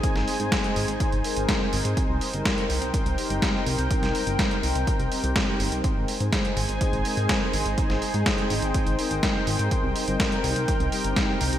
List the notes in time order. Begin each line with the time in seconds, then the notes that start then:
Already playing: D#4 G#4 C5 G#5
0.03 G#3 C4 D#4 C5, kick, closed hi-hat
0.16 G#1, snare
0.28 open hi-hat
0.40 G#2 G#3 C4 D#4 C5, closed hi-hat
0.52 kick, snare, closed hi-hat
0.64 closed hi-hat
0.76 G#1, open hi-hat
0.88 G#1, closed hi-hat
1.00 kick, closed hi-hat
1.12 G#1, closed hi-hat
1.24 G#3 C4 D#4 A#4, open hi-hat
1.36 G#1, closed hi-hat
1.49 kick, snare, closed hi-hat
1.73 G#1, open hi-hat
1.85 G#2, closed hi-hat
1.97 G3 C4 D#4 A#4 G5, kick, closed hi-hat
2.09 C2
2.21 open hi-hat
2.33 G1 G3 C4 D#4 A#4, closed hi-hat
2.45 kick, snare, closed hi-hat
2.58 closed hi-hat
2.70 C2, open hi-hat
2.82 C2, closed hi-hat
2.94 kick, closed hi-hat
3.06 C2, closed hi-hat
3.18 G3 C4 D#4 G4, open hi-hat
3.30 G1, closed hi-hat
3.42 kick, snare, closed hi-hat
3.66 C2, open hi-hat
3.79 C2, closed hi-hat
3.91 G3 C4 D#4 A#4, kick, closed hi-hat
4.03 C2, snare, closed hi-hat
4.15 open hi-hat
4.27 G1 G3 C4 D#4 A#4, closed hi-hat
4.39 kick, snare, closed hi-hat
4.51 closed hi-hat
4.63 C2, open hi-hat
4.75 C2, closed hi-hat
4.87 kick, closed hi-hat
4.99 C2, closed hi-hat
5.12 G3 C4 D#4 G4, open hi-hat
5.24 C2, closed hi-hat
5.36 kick, snare, closed hi-hat
5.60 G1, open hi-hat
5.72 C2, closed hi-hat
5.84 G#3 C4 D#4 G#4 C5 G#5, kick, closed hi-hat
5.96 G#1
6.08 open hi-hat
6.20 G#2 G#3 C4 D#4 C5, closed hi-hat
6.33 kick, snare, closed hi-hat
6.45 closed hi-hat
6.57 G#1, open hi-hat
6.69 G#1, closed hi-hat
6.81 kick, closed hi-hat
6.93 G#1, closed hi-hat
7.05 G#3 C4 D#4 A#4, open hi-hat
7.17 G#2, closed hi-hat
7.29 kick, snare, closed hi-hat
7.53 G#1, open hi-hat
7.66 G#1, closed hi-hat
7.78 G#3 C4 D#4 G5, kick, closed hi-hat
7.90 G#1, snare
8.02 open hi-hat
8.14 G#2 G#3 C4 D#4 C5, closed hi-hat
8.26 kick, snare, closed hi-hat
8.38 closed hi-hat
8.50 G#1, open hi-hat
8.62 G#1, closed hi-hat
8.74 kick, closed hi-hat
8.87 G#1, closed hi-hat
8.99 G#3 C4 D#4 A#4, open hi-hat
9.11 G#1, closed hi-hat
9.23 kick, snare, closed hi-hat
9.47 G#1, open hi-hat
9.59 G#2, closed hi-hat
9.71 G3 C4 D#4 A#4, kick, closed hi-hat
9.83 C2
9.96 open hi-hat
10.08 G1 G3 C4 D#4 A#4, closed hi-hat
10.20 kick, snare, closed hi-hat
10.32 closed hi-hat
10.44 C2, open hi-hat
10.56 C2, closed hi-hat
10.68 kick, closed hi-hat
10.80 C2, closed hi-hat
10.92 G3 C4 D#4 G4, open hi-hat
11.04 G1, closed hi-hat
11.16 kick, snare, closed hi-hat
11.41 C2, open hi-hat
11.53 C2, closed hi-hat